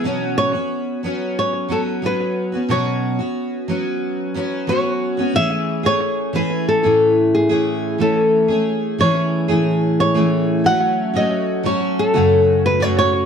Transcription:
0.04 B2 F#3 B3 C#4 F#4
0.38 C#5
0.53 B3 C#4 F#4
1.03 F#3 B3 C#4 F#4
1.39 C#5
1.69 F#3 B3 C#4 F#4 A4
2.02 F#3 B3 C#4 F#4 B4
2.52 B3 C#4 F#4
2.69 B2 F#3 B3 C#4 F#4 C#5
3.19 B3 C#4 F#4
3.68 F#3 B3 C#4 F#4
4.34 F#3 B3 C#4 F#4
4.67 F#3 B3 C#4 F#4 C#5
5.17 B3 C#4 F#4
5.34 E3 A3 C#4 G#4 E5
5.83 A3 C#4 G#4 C#5
6.33 E3 A3 C#4 G#4 B4
6.68 A4
6.83 A2 E3 A3 C#4
7.35 G#4
7.49 A2 E3 A3 C#4 G#4
7.98 E3 A3 C#4 A4
8.48 A3 C#4 G#4
8.98 E3 A3 C#4 G#4 C#5
9.48 A2 E3 A3 C#4 G#4
10.00 C#5
10.14 A2 E3 A3 C#4 G#4
10.64 F#3 A3 C#4 F#4 F#5
11.13 F#3 A3 C#4 F#4 D#5
11.63 F#3 A3 C#4 F#4 C#5
11.99 A4
12.14 F#2 C#3 F#3 A3 C#4 F#4
12.43 G#4
12.66 B4
12.80 F#2 C#3 F#3 A3 C#4 F#4 C#5
12.99 C#5

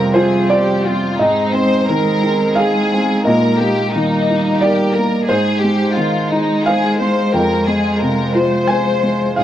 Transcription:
Already playing: F2 C3 G3 C4 F4 G#4 A#4 G5
0.14 F4 G#4 C5
0.49 G4 D5
0.85 C4 F4
1.19 G#2 G#3 D#4 G#4 D#5
1.52 C4 C5
1.87 D#3 A#4
2.23 D#4
2.55 G#4 F5
2.92 C4
3.24 A#2 A#3 A#4 D#5
3.59 A#3 G4
3.92 D#3 G3 D#4
4.30 D#4
4.61 G4 D5
4.65 A#4
4.94 A#3 A#4
5.25 G#4 C5
5.30 G#2 G#3 C5
5.59 G4
5.64 G#3
5.92 F4
5.97 D#3
6.28 D#4
6.63 G#4 F5
6.68 C5
6.98 G#3 C5
7.34 F2 F4 A#4 G5
7.68 G#3 G#4
7.99 C3 A#4
8.35 F4 C5
8.67 C5 G#5
9.03 G#3
9.36 G#2 D#3 G#3 G#4 F5

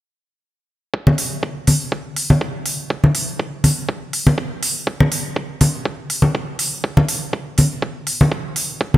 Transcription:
0.94 kick
1.07 high conga
1.18 open hi-hat
1.43 kick
1.67 open hi-hat, high conga
1.92 kick
2.16 open hi-hat
2.30 high conga
2.41 kick
2.66 open hi-hat
2.90 kick
3.04 high conga
3.15 open hi-hat
3.39 kick
3.64 open hi-hat, high conga
3.89 kick
4.13 open hi-hat
4.27 high conga
4.38 kick
4.63 open hi-hat
4.87 kick
5.00 high conga
5.12 open hi-hat
5.36 kick
5.61 open hi-hat, high conga
5.85 kick
6.10 open hi-hat
6.22 high conga
6.35 kick
6.59 open hi-hat
6.84 kick
6.97 high conga
7.09 open hi-hat
7.33 kick
7.58 open hi-hat, high conga
7.82 kick
8.07 open hi-hat
8.21 high conga
8.32 kick
8.56 open hi-hat
8.81 kick
8.94 high conga

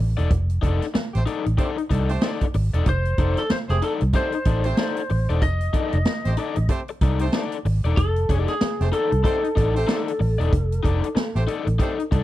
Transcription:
0.00 A1
0.17 E1 D#4 A4 D5, closed hi-hat
0.31 F1, kick, closed hi-hat
0.50 closed hi-hat
0.62 F1 D#4 A4 D5, kick, closed hi-hat
0.82 snare, closed hi-hat
0.94 muted overdriven electric guitar stroke, muted fingered electric bass stroke, snare
1.14 A1 A3 C4 G4 C5, closed hi-hat
1.26 D#4 A4 D5, closed hi-hat
1.45 A1, muted overdriven electric guitar stroke, closed hi-hat
1.57 A3 C4 D#4 G4 A4 C5 D5, kick, closed hi-hat
1.77 muted overdriven electric guitar stroke, closed hi-hat
1.90 C2 D#4 A4 D5, kick, closed hi-hat
2.08 A3 C4 G4 C5, muted overdriven electric guitar stroke, closed hi-hat
2.22 D#4 A4 D5, snare
2.41 kick, closed hi-hat
2.54 G#1, muted overdriven electric guitar stroke, open hi-hat
2.74 E1 D#4 A4 D5, closed hi-hat
2.86 F1 C5, kick, closed hi-hat
3.05 closed hi-hat
3.18 F1 D#4 A4 D5, kick, closed hi-hat
3.37 A4, snare, closed hi-hat
3.50 C5, muted overdriven electric guitar stroke, muted fingered electric bass stroke, snare
3.69 F1 A3 C4 G4 G#4 C5, snare, closed hi-hat
3.82 D#4 A4 D5, closed hi-hat
4.01 C2, muted overdriven electric guitar stroke, closed hi-hat
4.13 A3 C4 D#4 G4 A4 C5 D5, kick, closed hi-hat
4.32 muted overdriven electric guitar stroke, closed hi-hat
4.45 A1 D#4 A4 D5, kick, closed hi-hat
4.64 A3 C4 G4 C5, muted overdriven electric guitar stroke, closed hi-hat
4.77 D#4 A4 D5, snare
4.97 closed hi-hat
5.10 A1, muted overdriven electric guitar stroke, open hi-hat
5.29 E1 D#4 A4 D5, closed hi-hat
5.42 F1 D#5, kick, closed hi-hat
5.61 closed hi-hat
5.73 D#4 A4 D5, kick, closed hi-hat
5.93 F1, closed hi-hat
6.05 muted overdriven electric guitar stroke, muted fingered electric bass stroke, snare
6.25 A1 A3 C4 G4 C5, snare, closed hi-hat
6.37 D#4 A4 D5, closed hi-hat
6.56 A1, muted overdriven electric guitar stroke, closed hi-hat
6.69 A3 C4 G4 C5, muted overdriven electric guitar stroke, kick, closed hi-hat
6.88 muted overdriven electric guitar stroke, closed hi-hat
7.01 C2 D#4 A4 D5, kick, closed hi-hat
7.19 A3 C4 G4 C5, muted overdriven electric guitar stroke, closed hi-hat
7.33 D#4 A4 D5, snare
7.52 closed hi-hat
7.65 G#1, muted overdriven electric guitar stroke, open hi-hat
7.85 E1 D#4 A4 D5, closed hi-hat
7.97 F1 A4, kick, closed hi-hat
8.16 closed hi-hat
8.29 F1 D#4 A4 D5, kick, closed hi-hat
8.48 G#4, snare, closed hi-hat
8.61 muted overdriven electric guitar stroke, muted fingered electric bass stroke, snare
8.80 F1 A3 C4 G4 C5, snare, closed hi-hat
8.92 D#4 A4 D5, closed hi-hat
9.11 C2, muted overdriven electric guitar stroke, closed hi-hat
9.24 A3 C4 D#4 G4 A4 C5 D5, kick, closed hi-hat
9.43 muted overdriven electric guitar stroke, closed hi-hat
9.55 A1 D#4 A4 D5, kick, closed hi-hat
9.75 A3 C4 G4 C5, muted overdriven electric guitar stroke, closed hi-hat
9.87 D#4 A4 D5, snare
10.08 closed hi-hat
10.20 A1, muted overdriven electric guitar stroke, open hi-hat
10.38 E1 D#4 A4 D5, closed hi-hat
10.53 F1, kick, closed hi-hat
10.72 closed hi-hat
10.83 F1 D#4 A4 D5, kick, closed hi-hat
11.04 closed hi-hat
11.15 muted overdriven electric guitar stroke, muted fingered electric bass stroke, snare
11.35 A1 A3 C4 G4 C5, snare, closed hi-hat
11.47 D#4 A4 D5, closed hi-hat
11.67 A1, muted overdriven electric guitar stroke, closed hi-hat
11.79 A3 C4 D#4 G4 A4 C5 D5, kick, closed hi-hat
11.98 muted overdriven electric guitar stroke, closed hi-hat
12.11 C2 D#4 A4 D5, kick, closed hi-hat

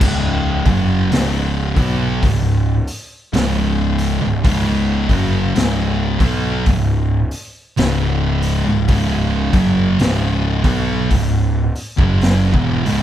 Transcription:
0.01 C#1 C#2 G#2 C#3, kick, crash
0.65 F#1 F#2 C#3 F#3, kick, open hi-hat
1.11 C#1 C#2 G#2 C#3, snare, open hi-hat
1.76 B1 B2 F#3 B3, kick, open hi-hat
2.22 C#1 C#2 G#2, kick, open hi-hat
2.87 open hi-hat
3.33 C#1 C#2 G#2 C#3, snare, open hi-hat
3.98 open hi-hat
4.21 C#1 C#2 G#2
4.44 C#1 C#2 G#2 C#3, kick, open hi-hat
5.09 F#1 F#2 C#3 F#3, kick, open hi-hat
5.55 C#1 C#2 G#2 C#3, snare, open hi-hat
6.20 B1 B2 F#3 B3, kick, open hi-hat
6.66 C#1 C#2 G#2, kick, open hi-hat
7.31 open hi-hat
7.77 C#1 C#2 G#2 C#3, snare, open hi-hat
8.42 open hi-hat
8.66 C#1 C#2 G#2
8.88 C#1 C#2 G#2 C#3, kick, open hi-hat
9.53 F#1 F#2 C#3 F#3, kick, open hi-hat
9.99 C#1 C#2 G#2 C#3, snare, open hi-hat
10.63 B1 B2 F#3 B3, kick, open hi-hat
11.11 C#1 C#2 G#2, kick, open hi-hat
11.75 open hi-hat
11.97 F#1 F#2 C#3 F#3, kick
12.21 snare, open hi-hat
12.53 E1 E2 B2, kick
12.85 C#1 C#2 G#2, open hi-hat

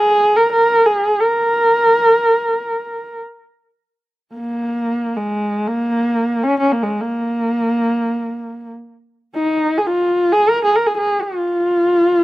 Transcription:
Already playing: G#4
0.36 A#4
0.53 A#4
0.86 G#4
1.20 A#4
4.35 A#3
5.17 G#3
5.67 A#3
6.43 C#4
6.60 C#4
6.72 A#3
6.83 G#3
7.00 A#3
9.35 D#4
9.78 G#4
9.86 F4
10.33 G#4
10.49 A#4
10.65 G#4
10.76 A#4
10.87 G#4
10.98 G#4
11.21 F4

